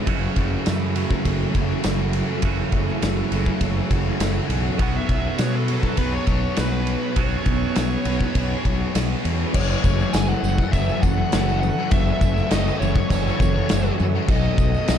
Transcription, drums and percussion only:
0.07 kick, ride
0.36 kick, ride
0.66 snare, ride, tambourine
0.96 ride
1.11 kick
1.25 kick, ride
1.55 kick, ride
1.84 snare, ride, tambourine
2.13 ride
2.42 kick, ride
2.72 kick, ride
3.02 snare, ride, tambourine
3.32 ride
3.46 kick
3.61 kick, ride
3.91 kick, ride
4.20 snare, ride, tambourine
4.50 ride
4.79 kick, ride
5.09 kick, ride
5.38 snare, ride, tambourine
5.68 ride
5.83 kick
5.97 kick, ride
6.27 kick, ride
6.57 snare, ride, tambourine
6.87 ride
7.16 kick, ride
7.46 kick, ride
7.76 snare, ride, tambourine
8.05 ride
8.21 kick
8.35 kick, ride
8.65 kick, ride
8.95 snare, ride, tambourine
9.25 ride
9.54 kick, crash, tambourine
9.84 kick, tambourine
9.99 tambourine
10.13 snare, tambourine, crash
10.29 tambourine
10.44 tambourine
10.58 kick
10.73 kick, tambourine, crash
10.89 tambourine
11.03 kick, tambourine
11.32 snare, tambourine, crash
11.49 tambourine
11.63 tambourine
11.91 kick, tambourine, crash
12.21 kick, tambourine
12.38 tambourine
12.51 snare, tambourine, crash
12.67 tambourine
12.82 tambourine
12.96 kick
13.10 kick, tambourine, crash
13.28 tambourine
13.40 kick, tambourine
13.69 snare, tambourine, crash
13.86 tambourine
14.01 tambourine
14.28 kick, tambourine, crash
14.58 kick, tambourine
14.74 tambourine
14.88 snare, tambourine, crash

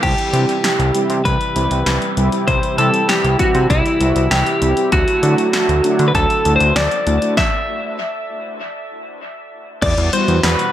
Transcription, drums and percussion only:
0.03 kick, closed hi-hat, crash
0.18 closed hi-hat
0.34 closed hi-hat
0.49 closed hi-hat
0.64 snare, closed hi-hat
0.80 closed hi-hat
0.95 closed hi-hat
1.10 closed hi-hat
1.25 kick, closed hi-hat
1.41 closed hi-hat
1.56 closed hi-hat
1.71 closed hi-hat
1.86 snare, closed hi-hat
2.02 closed hi-hat
2.17 closed hi-hat
2.32 closed hi-hat
2.48 kick, closed hi-hat
2.63 closed hi-hat
2.78 closed hi-hat
2.94 closed hi-hat
3.09 snare, closed hi-hat
3.25 closed hi-hat
3.39 kick, closed hi-hat
3.55 closed hi-hat
3.70 kick, closed hi-hat
3.86 closed hi-hat
4.01 closed hi-hat
4.16 closed hi-hat
4.31 snare, closed hi-hat
4.46 closed hi-hat
4.62 closed hi-hat
4.77 closed hi-hat
4.92 kick, closed hi-hat
5.08 closed hi-hat
5.23 closed hi-hat
5.38 closed hi-hat
5.53 snare, closed hi-hat
5.69 closed hi-hat
5.84 closed hi-hat
5.99 closed hi-hat
6.15 kick, closed hi-hat
6.30 closed hi-hat
6.45 closed hi-hat
6.60 closed hi-hat
6.76 snare, closed hi-hat
6.91 closed hi-hat
7.07 closed hi-hat
7.22 closed hi-hat
7.37 kick, snare
9.82 kick, closed hi-hat, crash
9.98 closed hi-hat
10.13 closed hi-hat
10.28 closed hi-hat
10.43 snare, closed hi-hat
10.59 closed hi-hat

